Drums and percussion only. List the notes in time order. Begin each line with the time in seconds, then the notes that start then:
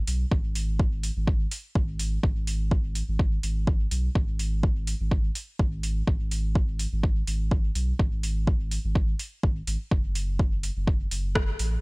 0.07 open hi-hat
0.31 kick
0.55 open hi-hat
0.79 kick
1.03 open hi-hat
1.27 kick
1.51 open hi-hat
1.75 kick
1.99 open hi-hat
2.23 kick
2.47 open hi-hat
2.71 kick
2.95 open hi-hat
3.19 kick
3.43 open hi-hat
3.67 kick
3.91 open hi-hat
4.15 kick
4.39 open hi-hat
4.63 kick
4.87 open hi-hat
5.11 kick
5.35 open hi-hat
5.59 kick
5.83 open hi-hat
6.07 kick
6.31 open hi-hat
6.55 kick
6.79 open hi-hat
7.03 kick
7.27 open hi-hat
7.51 kick
7.75 open hi-hat
7.99 kick
8.23 open hi-hat
8.47 kick
8.71 open hi-hat
8.95 kick
9.19 open hi-hat
9.43 kick
9.67 open hi-hat
9.91 kick
10.15 open hi-hat
10.39 kick
10.63 open hi-hat
10.87 kick
11.11 open hi-hat
11.35 kick, cross-stick
11.59 open hi-hat